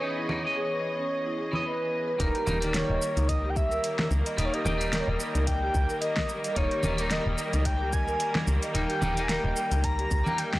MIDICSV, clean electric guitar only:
0, 0, Header, 1, 2, 480
1, 0, Start_track
1, 0, Tempo, 545455
1, 17, Time_signature, 4, 2, 24, 8
1, 9323, End_track
2, 0, Start_track
2, 0, Title_t, "Clean electric guitar"
2, 0, Program_c, 0, 27
2, 10, Note_on_c, 0, 52, 74
2, 18, Note_on_c, 0, 59, 69
2, 29, Note_on_c, 0, 63, 81
2, 227, Note_off_c, 0, 52, 0
2, 232, Note_off_c, 0, 59, 0
2, 237, Note_off_c, 0, 63, 0
2, 249, Note_on_c, 0, 52, 83
2, 257, Note_on_c, 0, 59, 75
2, 266, Note_on_c, 0, 63, 94
2, 354, Note_off_c, 0, 52, 0
2, 358, Note_off_c, 0, 59, 0
2, 362, Note_off_c, 0, 63, 0
2, 377, Note_on_c, 0, 52, 86
2, 395, Note_on_c, 0, 59, 82
2, 411, Note_on_c, 0, 75, 90
2, 1317, Note_off_c, 0, 52, 0
2, 1325, Note_off_c, 0, 59, 0
2, 1331, Note_on_c, 0, 52, 85
2, 1334, Note_off_c, 0, 75, 0
2, 1349, Note_on_c, 0, 59, 81
2, 1365, Note_on_c, 0, 75, 94
2, 1902, Note_off_c, 0, 52, 0
2, 1911, Note_off_c, 0, 59, 0
2, 1919, Note_off_c, 0, 75, 0
2, 1923, Note_on_c, 0, 55, 77
2, 1933, Note_on_c, 0, 58, 69
2, 1942, Note_on_c, 0, 63, 88
2, 2144, Note_off_c, 0, 55, 0
2, 2149, Note_off_c, 0, 58, 0
2, 2154, Note_off_c, 0, 63, 0
2, 2165, Note_on_c, 0, 55, 86
2, 2175, Note_on_c, 0, 58, 79
2, 2185, Note_on_c, 0, 63, 97
2, 2272, Note_off_c, 0, 55, 0
2, 2277, Note_off_c, 0, 58, 0
2, 2282, Note_off_c, 0, 63, 0
2, 2290, Note_on_c, 0, 55, 87
2, 2307, Note_on_c, 0, 58, 81
2, 2324, Note_on_c, 0, 51, 99
2, 3821, Note_off_c, 0, 55, 0
2, 3829, Note_off_c, 0, 58, 0
2, 3838, Note_off_c, 0, 51, 0
2, 3846, Note_on_c, 0, 55, 84
2, 3855, Note_on_c, 0, 58, 72
2, 3865, Note_on_c, 0, 63, 89
2, 4066, Note_off_c, 0, 55, 0
2, 4070, Note_off_c, 0, 58, 0
2, 4075, Note_off_c, 0, 63, 0
2, 4086, Note_on_c, 0, 55, 90
2, 4096, Note_on_c, 0, 58, 83
2, 4105, Note_on_c, 0, 63, 99
2, 4192, Note_off_c, 0, 55, 0
2, 4197, Note_off_c, 0, 58, 0
2, 4202, Note_off_c, 0, 63, 0
2, 4205, Note_on_c, 0, 55, 94
2, 4222, Note_on_c, 0, 58, 88
2, 4240, Note_on_c, 0, 63, 99
2, 5739, Note_off_c, 0, 55, 0
2, 5747, Note_off_c, 0, 58, 0
2, 5756, Note_off_c, 0, 63, 0
2, 5765, Note_on_c, 0, 55, 81
2, 5775, Note_on_c, 0, 58, 78
2, 5784, Note_on_c, 0, 63, 93
2, 5985, Note_off_c, 0, 55, 0
2, 5990, Note_off_c, 0, 58, 0
2, 5994, Note_off_c, 0, 63, 0
2, 6006, Note_on_c, 0, 55, 90
2, 6016, Note_on_c, 0, 58, 86
2, 6023, Note_on_c, 0, 63, 101
2, 6112, Note_off_c, 0, 55, 0
2, 6117, Note_off_c, 0, 58, 0
2, 6121, Note_off_c, 0, 63, 0
2, 6133, Note_on_c, 0, 55, 97
2, 6150, Note_on_c, 0, 58, 86
2, 6167, Note_on_c, 0, 63, 96
2, 7663, Note_off_c, 0, 55, 0
2, 7671, Note_off_c, 0, 58, 0
2, 7679, Note_off_c, 0, 63, 0
2, 7689, Note_on_c, 0, 55, 85
2, 7699, Note_on_c, 0, 58, 74
2, 7708, Note_on_c, 0, 63, 89
2, 7907, Note_off_c, 0, 55, 0
2, 7912, Note_off_c, 0, 58, 0
2, 7916, Note_off_c, 0, 63, 0
2, 7929, Note_on_c, 0, 55, 92
2, 7938, Note_on_c, 0, 58, 85
2, 7948, Note_on_c, 0, 63, 104
2, 8034, Note_off_c, 0, 55, 0
2, 8039, Note_off_c, 0, 58, 0
2, 8043, Note_off_c, 0, 63, 0
2, 8052, Note_on_c, 0, 55, 91
2, 8071, Note_on_c, 0, 58, 84
2, 8088, Note_on_c, 0, 63, 99
2, 8994, Note_off_c, 0, 55, 0
2, 9003, Note_off_c, 0, 58, 0
2, 9011, Note_on_c, 0, 55, 89
2, 9012, Note_off_c, 0, 63, 0
2, 9030, Note_on_c, 0, 58, 83
2, 9046, Note_on_c, 0, 63, 95
2, 9323, Note_off_c, 0, 55, 0
2, 9323, Note_off_c, 0, 58, 0
2, 9323, Note_off_c, 0, 63, 0
2, 9323, End_track
0, 0, End_of_file